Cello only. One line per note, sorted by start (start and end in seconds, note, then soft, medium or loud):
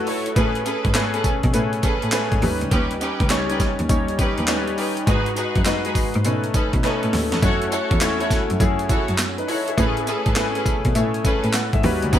0.36 0.58 A2 loud
0.85 0.93 G#2 medium
1.24 1.39 B2 soft
1.44 1.51 B2 loud
1.54 1.76 A2 loud
2.03 2.10 A2 medium
2.32 2.40 G#2 medium
2.42 2.56 D#2 loud
2.62 2.71 C#2 medium
2.72 2.93 D#2 loud
3.20 3.28 C#2 loud
3.60 3.74 D#2 soft
3.80 3.87 D#2 loud
3.90 4.11 D#2 loud
4.38 4.46 D#2 medium
5.07 5.29 G#2 loud
5.56 5.63 F#2 medium
5.95 6.10 G#2 soft
6.15 6.22 G#2 loud
6.25 6.47 B2 loud
6.74 6.81 B2 medium
7.03 7.10 A2 medium
7.13 7.27 D#2 loud
7.32 7.40 E2 medium
7.43 7.64 F#2 loud
7.91 7.99 E2 medium
8.31 8.45 F#2 soft
8.50 8.58 F#2 loud
8.60 8.82 F#2 loud
9.09 9.16 F#2 medium
9.78 9.99 A2 loud
10.26 10.34 G#2 medium
10.66 10.80 B2 medium
10.85 10.93 B2 medium
10.95 11.17 A2 loud
11.44 11.52 A2 medium
11.73 11.81 G#2 medium
11.84 11.98 D#2 loud
12.03 12.10 C#2 loud
12.13 12.19 D#2 loud